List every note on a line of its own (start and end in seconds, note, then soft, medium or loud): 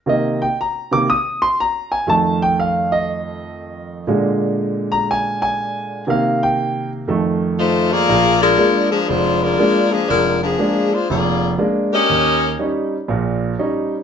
0.06 0.44 C3 soft
0.06 0.44 D#3 soft
0.06 0.45 A#3 medium
0.06 0.40 D#5 medium
0.42 0.57 G5 medium
0.61 0.91 A#5 medium
0.91 1.05 C3 soft
0.91 1.06 D#3 soft
0.91 1.06 A#3 soft
0.91 1.07 D6 medium
1.10 1.41 D#6 medium
1.42 1.57 C6 medium
1.60 1.91 A#5 medium
1.92 2.07 G#5 medium
2.07 4.03 F2 soft
2.07 4.03 D#3 soft
2.07 4.03 A3 medium
2.07 2.40 A5 medium
2.42 2.57 G5 medium
2.60 2.91 F5 medium
2.92 4.04 D#5 medium
4.07 6.03 A#2 soft
4.07 6.04 D3 soft
4.07 6.04 G#3 medium
4.92 5.07 A#5 medium
5.11 5.41 G#5 medium
5.42 6.04 G#5 medium
6.07 7.03 C3 soft
6.07 7.04 D#3 soft
6.07 7.04 A#3 medium
6.07 6.41 F5 medium
6.43 6.89 G5 medium
7.08 8.04 F2 soft
7.08 8.04 D#3 soft
7.08 8.04 A3 medium
7.59 7.89 A3 medium
7.59 7.90 D#4 medium
7.59 7.89 F4 medium
7.59 7.90 C5 loud
7.92 8.42 A#3 loud
7.92 8.40 F4 loud
7.92 8.42 G#4 loud
7.92 8.42 D5 loud
8.09 8.52 A#1 medium
8.42 8.88 G#3 medium
8.42 8.88 D4 medium
8.42 8.88 F4 medium
8.42 8.88 A#4 loud
8.58 8.93 G#3 medium
8.58 8.93 A#3 soft
8.58 8.94 D4 medium
8.91 9.08 F3 medium
8.91 9.08 A#3 medium
8.91 9.07 D4 medium
8.91 9.08 G#4 medium
9.08 9.52 F1 medium
9.08 9.41 G#3 medium
9.08 9.41 D4 medium
9.08 9.41 F4 medium
9.08 9.42 C5 medium
9.42 9.92 G#3 medium
9.42 9.90 D4 medium
9.42 9.92 F4 medium
9.42 9.92 A#4 medium
9.59 9.94 G#3 medium
9.59 9.94 A#3 soft
9.59 9.94 D4 medium
9.91 10.08 F3 medium
9.91 10.08 A#3 medium
9.91 10.07 D4 medium
9.91 10.08 G#4 medium
10.08 10.53 F1 medium
10.08 10.40 G#3 medium
10.08 10.39 D4 medium
10.08 10.40 F4 medium
10.08 10.40 A#4 loud
10.43 10.93 F3 medium
10.43 10.93 A#3 medium
10.43 10.92 D4 medium
10.43 10.93 G#4 loud
10.59 10.94 G#3 medium
10.59 10.94 A#3 soft
10.59 10.94 D4 medium
10.94 11.09 G#3 medium
10.94 11.09 D4 medium
10.94 11.09 F4 medium
10.94 11.09 C5 loud
11.10 11.53 F1 medium
11.10 11.55 A#3 medium
11.10 11.55 F4 medium
11.10 11.55 G#4 medium
11.10 11.55 D5 medium
11.58 11.94 G#3 medium
11.58 11.94 A#3 soft
11.58 11.94 D4 medium
11.93 12.55 C#4 loud
11.93 12.55 G4 loud
11.93 12.55 A#4 loud
11.93 12.55 D#5 loud
12.10 12.53 D#2 medium
12.59 12.94 G3 medium
12.59 12.94 C#4 soft
12.59 12.95 D#4 medium
13.08 13.52 A#1 medium
13.08 13.52 A#2 medium
13.59 13.94 G3 medium
13.59 13.94 C#4 soft
13.59 13.94 D#4 medium